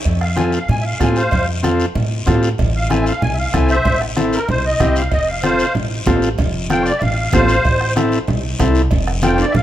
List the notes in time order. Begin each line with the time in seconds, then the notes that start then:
0.05 F2, bombo low, cowbell, high conga, long guiro
0.21 F5, bombo rim
0.36 C4 F4 A4 G#5, bombo rim, cowbell, high conga, short guiro
0.49 E5, short guiro
0.54 F5
0.68 A2 G#5, cowbell, high conga, low conga, long guiro
0.81 E5
0.85 F5
1.00 A2 C4 F4 A4 G#5, bombo low, bombo rim, cowbell, high conga, low timbale, short guiro
1.16 C5 F5, short guiro
1.31 F2, bombo low, cowbell, high conga, low conga, long guiro
1.63 C4 F4 A4, bombo rim, cowbell, high conga, short guiro
1.80 short guiro
1.95 A2, cowbell, high conga, low conga, long guiro
2.26 A2 C4 F4 A4, bombo low, bombo rim, cowbell, high conga, low timbale, short guiro
2.43 short guiro
2.58 A1, bombo low, cowbell, high conga, low conga, long guiro
2.76 F5
2.90 C4 E4 A4 G#5, bombo rim, cowbell, high conga, short guiro
3.02 E5
3.06 F5, short guiro
3.22 C2 G#5, cowbell, high conga, low conga, long guiro
3.34 E5
3.39 F5
3.53 C2 C4 E4 A4 G#5, bombo low, bombo rim, cowbell, high conga, short guiro
3.69 C5 E5, short guiro
3.85 A1, bombo low, cowbell, high conga, low conga, long guiro
4.01 bombo rim
4.16 C4 E4 A4, bombo rim, cowbell, high conga, short guiro
4.33 A#4, short guiro
4.48 C2 C5, cowbell, high conga, low conga, long guiro
4.66 D#5
4.80 C2 C4 E4 G4, bombo low, bombo rim, cowbell, high conga, low conga, short guiro
4.96 F5, short guiro
5.12 F1 D#5, bombo low, cowbell, high conga, long guiro
5.28 F5
5.43 C4 F4 A4 C5 F5, bombo rim, cowbell, high conga, short guiro
5.59 short guiro
5.75 A1, cowbell, high conga, low conga, long guiro
6.06 A1 C4 F4 A4, bombo low, bombo rim, cowbell, high conga, low conga, low timbale, short guiro
6.22 short guiro
6.38 F1, bombo low, cowbell, high conga, low conga, long guiro
6.70 C4 F4 A4 G5, bombo rim, cowbell, high conga, short guiro
6.82 C#5
6.86 D5, short guiro
6.98 A1 E5, cowbell, high conga, low conga, long guiro
7.02 F5
7.33 A1 C4 F4 A4 C5 F5, bombo low, bombo rim, cowbell, high conga, low conga, low timbale, short guiro
7.48 short guiro
7.65 A1, bombo low, cowbell, high conga, long guiro
7.81 bombo rim
7.96 C4 E4 A4, bombo rim, cowbell, high conga, short guiro
8.12 short guiro
8.28 C2, cowbell, high conga, low conga, long guiro
8.59 C2 C4 E4 A4, bombo low, bombo rim, cowbell, high conga, short guiro
8.75 short guiro
8.91 F1, bombo low, cowbell, high conga, low conga, long guiro
9.07 bombo rim
9.22 C4 F4 A4 G5, bombo rim, cowbell, high conga, short guiro
9.35 C#5, high timbale, short guiro
9.39 D5
9.51 A1 E5, cowbell, high conga, low conga, long guiro
9.56 F5